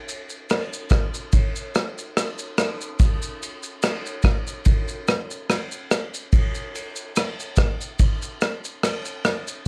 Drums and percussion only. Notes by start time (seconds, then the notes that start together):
0.09 ride, shaker
0.30 shaker
0.50 cross-stick, ride, shaker
0.73 shaker
0.90 kick, cross-stick, ride, shaker
1.14 shaker
1.32 kick, ride, shaker
1.56 shaker
1.75 cross-stick, ride, shaker
1.98 shaker
2.17 cross-stick, ride, shaker
2.39 shaker
2.58 cross-stick, ride, shaker
2.81 shaker
2.99 kick, ride, shaker
3.22 shaker
3.43 ride, shaker
3.63 shaker
3.83 cross-stick, ride, shaker
4.06 shaker
4.23 kick, cross-stick, ride, shaker
4.47 shaker
4.65 kick, ride, shaker
4.88 shaker
5.08 cross-stick, ride, shaker
5.31 shaker
5.50 cross-stick, ride, shaker
5.72 shaker
5.91 cross-stick, ride, shaker
6.14 shaker
6.33 kick, ride, shaker
6.55 shaker
6.75 ride, shaker
6.96 shaker
7.16 cross-stick, ride, shaker
7.40 shaker
7.56 kick, cross-stick, ride, shaker
7.81 shaker
7.99 kick, ride, shaker
8.22 shaker
8.41 cross-stick, ride, shaker
8.65 shaker
8.83 cross-stick, ride, shaker
9.05 shaker
9.25 cross-stick, ride, shaker
9.48 shaker